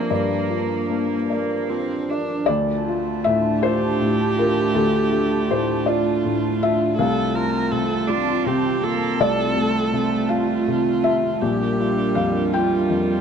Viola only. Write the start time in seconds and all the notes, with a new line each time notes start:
Already playing: A#3
1.29 A#3
1.70 C4
2.10 D4
3.63 G4
5.88 F4
6.97 A4
7.35 A#4
7.72 A4
8.09 F4
8.47 G4
8.84 A4
10.30 F4
11.42 G4
12.52 F4